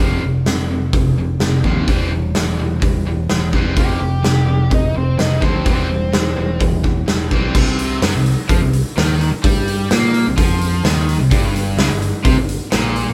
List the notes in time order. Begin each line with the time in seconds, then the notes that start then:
0.00 F1 F2 C3 F3
0.22 F1 F2 C3
0.46 F1 F2 C3, snare, open hi-hat
0.71 F2 C3
0.93 F1 F2 C3, kick, open hi-hat
1.16 F1 F2 C3
1.39 F1 F2 C3, snare, open hi-hat
1.64 D#2 F2 C3 F3, kick
1.88 E1 E3 G3 C4, kick, open hi-hat
2.12 E3 G3
2.35 E1 E3 G3, snare, open hi-hat
2.59 E1 E3 G3
2.82 E1 E3 G3, kick, open hi-hat
3.05 E1 E3 G3
3.29 E1 E3 G3, snare, open hi-hat
3.53 E1 E3 G3 C4, kick
3.76 F1 F2 C3 F3 G4, kick, open hi-hat
4.00 F1 F2 C3
4.23 F1 F2 C3, snare, open hi-hat
4.47 F2 C3
4.70 F1 F2 C3 D#4, kick, open hi-hat
4.94 F1 F2 C3 C4
5.17 F1 F2 C3 D#4, snare, open hi-hat
5.40 D2 F2 C3 F3, kick
5.45 C4
5.66 E1 E3 G3 C4, kick, open hi-hat
5.90 E3 G3
6.13 E1 E3 G3, snare, open hi-hat
6.36 E1 E3 G3
6.60 E1 E3 G3, kick, open hi-hat
6.84 E1 E3 G3, kick
7.07 E1 E3 G3, snare, open hi-hat
7.31 B1 E3 G3 C4, kick
7.55 C2 C3, kick, crash
7.79 open hi-hat
8.02 F#2 F#3, snare, open hi-hat
8.14 C2 C3
8.26 open hi-hat
8.49 F2 F3, kick, open hi-hat
8.61 C2 C3
8.73 open hi-hat
8.97 D#2 D#3, snare, open hi-hat
9.21 open hi-hat
9.32 muted overdriven electric guitar stroke, muted picked electric bass stroke
9.43 G2 G3, kick, open hi-hat
9.68 open hi-hat
9.91 A#2 A#3, snare, open hi-hat
10.14 open hi-hat
10.26 C2 C3
10.36 F2 F3, kick, open hi-hat
10.61 open hi-hat
10.84 D#2 D#3, snare, open hi-hat
11.09 open hi-hat
11.19 C2 C3
11.31 G1 G2, kick, open hi-hat
11.56 open hi-hat
11.77 C#2 C#3, snare, open hi-hat
11.89 G1 G2
12.02 open hi-hat
12.24 C2 C3, kick, open hi-hat
12.36 G1 G2
12.49 open hi-hat
12.72 A#1 A#2, snare, open hi-hat
12.96 open hi-hat
13.07 muted overdriven electric guitar stroke, muted picked electric bass stroke